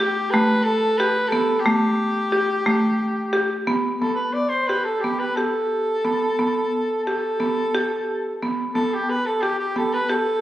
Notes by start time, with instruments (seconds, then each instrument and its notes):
Already playing: soprano saxophone G4
0.00 marimba G4
0.30 marimba A3, soprano saxophone B4
0.63 soprano saxophone A4
0.97 marimba G4, soprano saxophone B4
1.28 soprano saxophone A4
1.32 marimba B3
1.60 soprano saxophone G4
1.66 marimba A3
2.32 marimba G4
2.66 marimba A3
3.33 marimba G4
3.67 marimba B3
4.00 marimba B3, soprano saxophone A4
4.15 soprano saxophone B4
4.33 soprano saxophone D5
4.49 soprano saxophone C5
4.67 marimba G4, soprano saxophone B4
4.84 soprano saxophone A4
5.00 marimba B3, soprano saxophone G4
5.19 soprano saxophone B4
5.35 marimba G4, soprano saxophone A4
6.05 marimba B3
6.39 marimba B3
7.04 marimba G4, soprano saxophone A4
7.40 marimba B3
7.75 marimba G4
8.43 marimba B3
8.74 marimba B3, soprano saxophone A4
8.93 soprano saxophone G4
9.09 soprano saxophone B4
9.25 soprano saxophone A4
9.41 soprano saxophone G4, marimba G4
9.59 soprano saxophone G4
9.76 marimba B3, soprano saxophone A4
9.93 soprano saxophone B4
10.09 marimba G4, soprano saxophone A4